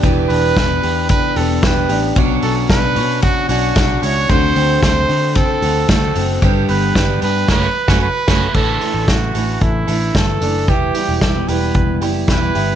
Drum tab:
CC |----------------|----------------|----------------|--------x-----x-|
RD |x---x---x---x---|x---x---x---x---|x---x---x---x---|x---x-----------|
HH |p-o---o-p-o-p-o-|p-o-p-o-p-o-p-o-|p-o-p-o-p-o-p-o-|p-o-p-o---------|
SD |----o-------o---|----o-------o---|----o-------o---|----o---o--o--o-|
BD |o---o---o---o---|o---o---o---o---|o---o---o---o---|o---o---o--o--o-|

CC |x---------------|----------------|
RD |----------------|----------------|
HH |--o-x-o-x-o-x-o-|x-o-x-o-x-o-x-o-|
SD |----o-------o---|----o-------o---|
BD |o---o---o---o---|o---o---o---o---|